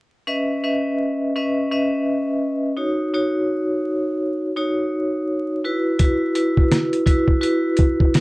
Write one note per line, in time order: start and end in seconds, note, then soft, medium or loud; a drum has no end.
0.27 0.61 C#4 medium
0.27 0.61 B4 medium
0.27 0.61 D#5 medium
0.27 0.61 E5 loud
0.64 1.31 C#4 medium
0.64 1.31 B4 medium
0.64 1.31 D#5 medium
0.64 1.31 E5 loud
1.36 1.69 C#4 medium
1.36 1.69 B4 medium
1.36 1.69 D#5 medium
1.36 1.69 E5 medium
1.71 2.72 C#4 medium
1.71 2.72 B4 medium
1.71 2.72 D#5 medium
1.71 2.72 E5 medium
2.77 3.11 D#4 medium
2.77 3.11 F#4 medium
2.77 3.11 C#5 medium
3.14 4.48 D#4 medium
3.14 4.48 F#4 medium
3.14 4.48 C#5 loud
4.56 5.57 D#4 medium
4.56 5.57 F#4 medium
4.56 5.57 C#5 loud
5.64 5.98 E4 medium
5.64 5.98 F#4 medium
5.64 5.98 B4 medium
5.99 6.33 E4 loud
5.99 6.33 F#4 medium
5.99 6.33 B4 loud
5.99 kick loud
5.99 closed hi-hat loud
6.35 7.02 E4 medium
6.35 7.02 F#4 medium
6.35 7.03 B4 loud
6.35 closed hi-hat medium
6.57 kick medium
6.72 cross-stick medium
6.72 snare loud
6.72 closed hi-hat medium
6.93 closed hi-hat medium
7.06 7.40 E4 loud
7.06 7.40 F#4 medium
7.06 7.40 B4 loud
7.06 kick medium
7.06 closed hi-hat medium
7.28 kick medium
7.41 8.20 E4 medium
7.41 8.20 F#4 medium
7.41 8.20 B4 loud
7.41 closed hi-hat medium
7.77 kick medium
7.77 closed hi-hat medium
8.00 kick loud
8.14 cross-stick medium
8.14 snare loud
8.14 closed hi-hat medium